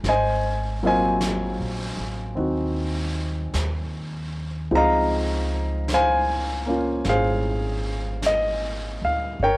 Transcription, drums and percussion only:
0.04 brush sweep soft
0.04 snare soft
1.21 brush sweep soft
1.21 snare soft
1.21 hi-hat pedal soft
2.37 brush sweep soft
3.54 brush sweep soft
3.54 snare soft
3.54 hi-hat pedal soft
4.71 brush sweep soft
5.88 brush sweep soft
5.88 snare soft
5.88 hi-hat pedal soft
7.05 brush sweep soft
7.05 snare soft
8.22 brush sweep soft
8.22 snare soft
8.22 hi-hat pedal soft
9.40 brush sweep soft

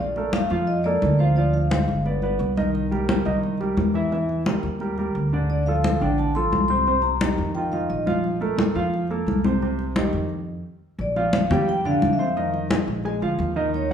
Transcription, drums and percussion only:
0.16 high conga soft
0.33 high conga medium
0.50 high conga soft
0.68 high conga soft
0.86 high conga soft
1.02 high conga medium
1.37 high conga soft
1.54 high conga soft
1.71 high conga medium
1.89 high conga soft
2.06 high conga soft
2.22 high conga soft
2.40 high conga soft
2.57 high conga medium
2.75 high conga soft
2.92 high conga soft
3.09 high conga medium
3.26 high conga soft
3.43 high conga soft
3.61 high conga soft
3.77 high conga medium
4.12 high conga soft
4.29 high conga soft
4.46 high conga medium
4.63 high conga soft
4.80 high conga soft
4.98 high conga soft
5.15 high conga soft
5.50 high conga soft
5.67 high conga soft
5.84 high conga medium
6.02 high conga soft
6.19 high conga soft
6.36 high conga soft
6.53 high conga medium
6.87 high conga soft
7.04 high conga soft
7.21 high conga loud
7.38 high conga soft
7.55 high conga soft
7.73 high conga soft
7.90 high conga soft
8.07 high conga medium
8.24 high conga soft
8.42 high conga soft
8.59 high conga loud
8.76 high conga soft
8.94 high conga soft
9.11 high conga soft
9.28 high conga medium
9.44 high conga medium
9.62 high conga soft
9.79 high conga soft
9.96 high conga medium
10.13 high conga soft
10.99 high conga soft
11.16 high conga soft
11.33 high conga medium
11.51 high conga soft
11.51 low conga medium
11.68 high conga soft
11.85 high conga soft
12.02 high conga medium
12.37 high conga soft
12.54 high conga soft
12.71 high conga loud
12.88 high conga soft
13.06 high conga soft
13.22 high conga soft
13.40 high conga soft
13.74 high conga soft

